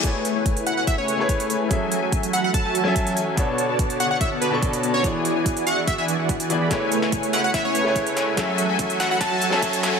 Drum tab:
HH |x-x-xxx-x-x-xxx-|x-x-xxx-x-x-xxx-|x-x-xxx-x-x-xxx-|x-x-xxx-x-x-xxx-|
SD |----------------|----------------|----------------|----------------|
BD |o---o---o---o---|o---o---o---o---|o---o---o---o---|o---o---o---o---|

HH |x-x-xxx-x-x-xxx-|x-x-xxx-x-x-xxx-|
SD |o--o--o-o-----o-|o-----o-o--o--o-|
BD |o---o---o---o---|o---o---o---o---|